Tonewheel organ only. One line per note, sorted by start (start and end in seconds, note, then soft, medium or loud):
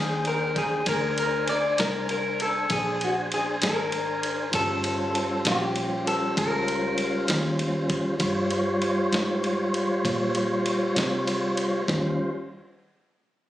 0.00 0.83 D4 medium
0.00 0.83 G#4 medium
0.00 0.83 C5 medium
0.00 0.83 G5 medium
0.86 4.49 D4 medium
0.86 4.49 C5 medium
0.86 4.49 G#5 medium
4.50 8.15 G3 medium
4.50 8.15 C#4 medium
4.50 8.15 F4 medium
4.50 8.15 C5 medium
8.18 11.83 G3 medium
8.18 11.82 F4 medium
8.18 11.83 C5 medium
8.18 11.83 C#5 medium
11.89 12.31 G3 medium
11.89 12.31 C#4 medium
11.89 12.30 F4 medium
11.89 12.31 C5 medium